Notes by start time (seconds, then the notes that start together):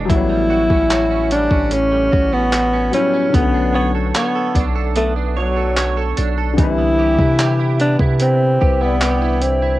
Already playing: E3 G#3 D4 F#4
0.05 F#3 G3
0.09 A1 A2 B3 E4, kick, closed hi-hat
0.15 C#5
0.29 G3
0.50 F#4
0.70 A1 C#4, kick
0.90 F#4 C#5, clap, closed hi-hat
1.11 C#4
1.31 G3 D4, closed hi-hat
1.51 A1 C#4, kick
1.71 A2 C#4, closed hi-hat
1.92 G3
2.12 A1 F#4, kick
2.32 B3 C#4
2.53 F#4, clap, closed hi-hat
2.73 C#4
2.91 F#3 G3 B3 C#4, closed hi-hat
2.96 E4
3.14 C#4
3.29 D3 F#3
3.34 B1 A3 B3, kick, closed hi-hat
3.39 C#4
3.54 D4
3.74 B3 C#5
3.95 A4
4.15 B3 C#5, clap, closed hi-hat
4.35 A4
4.55 B1 D4, kick, closed hi-hat
4.75 A4
4.96 A3 B3, closed hi-hat
5.16 D4
5.37 F#3 C#5
5.57 A4
5.77 C#5, clap, closed hi-hat
5.97 A4
6.17 B1 D4, closed hi-hat
6.38 A4
6.54 D3 E3
6.58 C2 C3 G3 E4, kick, closed hi-hat
6.63 B4
6.78 B3
6.99 G4
7.18 C3 E4, kick
7.39 G4, clap, closed hi-hat
7.59 E4
7.80 B3 D4, closed hi-hat
7.99 C3 E4, kick
8.20 C3 C4, closed hi-hat
8.61 C2 G4 B4, kick
8.81 B3 E4
8.86 D5
9.01 G4, clap, closed hi-hat
9.22 E4
9.42 C4, closed hi-hat
9.62 E4